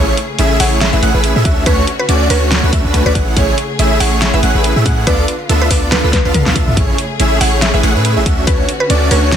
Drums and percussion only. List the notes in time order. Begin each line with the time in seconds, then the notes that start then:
0.17 closed hi-hat
0.39 closed hi-hat
0.60 open hi-hat
0.81 snare, closed hi-hat
1.03 closed hi-hat
1.24 closed hi-hat
1.45 kick, closed hi-hat
1.66 kick, closed hi-hat
1.87 closed hi-hat
2.09 closed hi-hat
2.30 open hi-hat
2.51 snare, closed hi-hat
2.73 kick, closed hi-hat
2.94 kick, closed hi-hat
3.15 kick, closed hi-hat
3.37 kick, closed hi-hat
3.58 closed hi-hat
3.79 closed hi-hat
4.00 open hi-hat
4.22 snare, closed hi-hat
4.43 closed hi-hat
4.64 closed hi-hat
4.86 kick, closed hi-hat
5.07 kick, closed hi-hat
5.28 closed hi-hat
5.49 closed hi-hat
5.71 kick, open hi-hat
5.92 snare, closed hi-hat
6.13 kick, snare, closed hi-hat
6.34 kick, closed hi-hat, mid tom
6.46 snare
6.56 kick, closed hi-hat
6.68 mid tom
6.77 kick, closed hi-hat
6.98 closed hi-hat
7.20 closed hi-hat
7.41 open hi-hat
7.62 snare, closed hi-hat
7.83 closed hi-hat
8.05 closed hi-hat
8.26 kick, closed hi-hat
8.47 kick, closed hi-hat
8.69 closed hi-hat
8.90 closed hi-hat
9.11 open hi-hat
9.32 snare, closed hi-hat